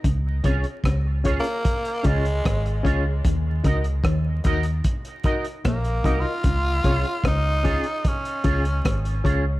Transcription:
<<
  \new Staff \with { instrumentName = "Reed electric piano" } { \time 4/4 \key des \major \tempo 4 = 75 r8 <des' f' aes' des''>16 r8. <des' f' aes' des''>16 r8. <des' f' aes' des''>16 r8. <des' f' aes' des''>16 <aes' des''>16 | r8 <ees' ges' bes' ees''>16 r8. <ees' ges' bes' ees''>16 r8. <ees' ges' bes' ees''>16 r8. <ees' ges' bes' ees''>16 <bes' ees''>16 | r8 <des' f' aes' des''>16 r8. <des' f' aes' des''>16 r8. <des' f' aes' des''>16 r8. <des' f' aes' des''>16 r16 | }
  \new Staff \with { instrumentName = "Clean electric guitar" } { \time 4/4 \key des \major r8 <des' f' aes' des''>16 r8. <des' f' aes' des''>16 r8. <des' f' aes' des''>16 r8. <des' f' aes' des''>16 r16 | r8 <ees' ges' bes' ees''>16 r8. <ees' ges' bes' ees''>16 r8. <ees' ges' bes' ees''>16 r8. <ees' ges' bes' ees''>16 r16 | r8 <des' f' aes' des''>16 r8. <des' f' aes' des''>16 r8. <des' f' aes' des''>16 r8. <des' f' aes' des''>16 r16 | }
  \new Staff \with { instrumentName = "Tenor saxophone" } { \time 4/4 \key des \major r4 \tuplet 3/2 { r4 bes8~ } bes8 aes4 r8 | r2. \tuplet 3/2 { bes4 f'8~ } | f'4 ees'4 des'4. r8 | }
  \new Staff \with { instrumentName = "Clean electric guitar" } { \clef bass \time 4/4 \key des \major des8 c16 r16 des8 r4 des8 aes,8 des8 | ees8 des8 ees8 ees8 r4 bes,8 c16 r16 | des8 c16 r16 des8 r4 des8 aes,8 des8 | }
  \new Staff \with { instrumentName = "Fingered electric bass" } { \clef bass \time 4/4 \key des \major des,8 c,16 r16 des,8. r8. des,8 aes,,8 des,8 | ees,8 des,8 ees,8 ees,8 r4 bes,,8 c,16 r16 | des,8 c,16 r16 des,8. r8. des,8 aes,,8 des,8 | }
  \new DrumStaff \with { instrumentName = "Drums" } \drummode { \time 4/4 <hh bd>8 <hh bd>16 hh16 <hh bd ss>8 <hh bd>16 hh16 <hh bd>16 hh16 <hh bd>16 hh16 <hh bd ss>16 hh16 <hh bd>8 | <hh bd>8 <hh bd>16 hh16 <hh bd ss>8 <hh bd>16 hh16 <hh bd>16 hh16 <hh bd>16 hh16 <hh bd ss>16 hh16 <hh bd>8 | <hh bd>8 <hh bd>16 hh16 <hh bd ss>8 <hh bd>16 hh16 <hh bd>16 hh16 <hh bd>16 hh16 <hh bd ss>16 hh16 <hh bd>8 | }
>>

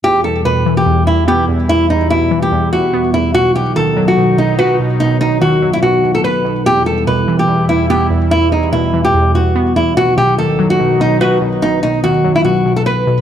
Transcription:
<<
  \new Staff \with { instrumentName = "Nylon-string guitar" } { \time 4/4 \key e \minor \tempo 4 = 145 g'8 a'8 b'8. g'8. e'8 g'8 r8 | e'8 dis'8 e'8. g'8. fis'4 e'8 | fis'8 g'8 a'8. fis'8. dis'8 fis'8 r8 | dis'8 dis'8 fis'8. e'16 fis'8. a'16 b'4 |
g'8 a'8 b'8. g'8. e'8 g'8 r8 | e'8 dis'8 e'8. g'8. fis'4 e'8 | fis'8 g'8 a'8. fis'8. dis'8 fis'8 r8 | dis'8 dis'8 fis'8. e'16 fis'8. a'16 b'4 | }
  \new Staff \with { instrumentName = "Analog synth pad" } { \clef bass \time 4/4 \key e \minor << { <e g e'>1~ | <e g e'>1 | <dis fis dis'>1~ | <dis fis dis'>1 |
<e g e'>1~ | <e g e'>1 | <dis fis dis'>1~ | <dis fis dis'>1 | } \\ { b,1~ | b,1~ | b,1~ | b,1~ |
b,1~ | b,1 | b,1~ | b,1 | } >> }
  \new Staff \with { instrumentName = "Synth pluck" } { \clef bass \time 4/4 \key e \minor e,8 e,8 b,8 e8 e,8 e,8 b8 e,8 | e,8 e,8 b,8 e8 e,8 e,8 b8 e,8 | b,8 b,8 dis8 fis8 b,8 b,8 b'8 b,8 | b,8 b,8 dis8 fis8 b,8 b,8 b'8 b,8 |
e,8 e,8 b,8 e8 e,8 e,8 b8 e,8 | e,8 e,8 b,8 e8 e,8 e,8 b8 e,8 | b,8 b,8 dis8 fis8 b,8 b,8 b'8 b,8 | b,8 b,8 dis8 fis8 b,8 b,8 b'8 b,8 | }
>>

